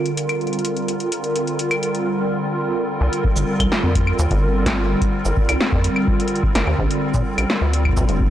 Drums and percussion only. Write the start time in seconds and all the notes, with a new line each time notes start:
0.06 closed hi-hat
0.17 closed hi-hat
0.29 closed hi-hat, claves
0.41 closed hi-hat
0.47 closed hi-hat
0.53 closed hi-hat
0.59 closed hi-hat
0.65 closed hi-hat
0.77 closed hi-hat
0.88 closed hi-hat
1.00 closed hi-hat
1.12 closed hi-hat
1.24 closed hi-hat
1.36 closed hi-hat
1.47 closed hi-hat
1.59 closed hi-hat
1.71 closed hi-hat, claves
1.83 closed hi-hat
1.95 closed hi-hat
3.13 closed hi-hat
3.24 kick
3.36 shaker
3.60 kick, closed hi-hat, claves
3.72 snare
3.95 kick, closed hi-hat
4.07 claves
4.19 shaker
4.31 kick, closed hi-hat
4.66 kick, snare, closed hi-hat
5.02 kick, closed hi-hat
5.25 shaker
5.37 kick
5.49 closed hi-hat, claves
5.61 snare
5.72 kick
5.84 closed hi-hat
5.96 claves
6.08 kick
6.20 closed hi-hat
6.28 closed hi-hat
6.36 closed hi-hat
6.43 kick
6.55 snare, closed hi-hat, claves
6.58 claves
6.61 claves
6.64 claves
6.67 claves
6.79 kick
6.91 closed hi-hat
7.14 kick, shaker
7.38 closed hi-hat, claves
7.50 snare
7.73 closed hi-hat
7.85 kick, claves
7.89 kick
7.93 kick
7.97 kick, shaker
8.01 kick
8.05 kick, closed hi-hat
8.21 kick